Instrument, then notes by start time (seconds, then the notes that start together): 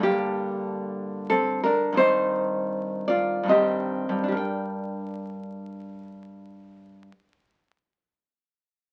nylon-string guitar
0.00 G2 D3 G4
0.05 A#3
1.30 C4 A4
1.63 D4 A#4
1.93 G2 D#3 C4
1.97 D#4 C5
3.08 F4 D5
3.43 G2 D#3
3.48 C4 G4 D#5
4.09 G2
4.24 D4
4.28 G4 A#4
4.37 G5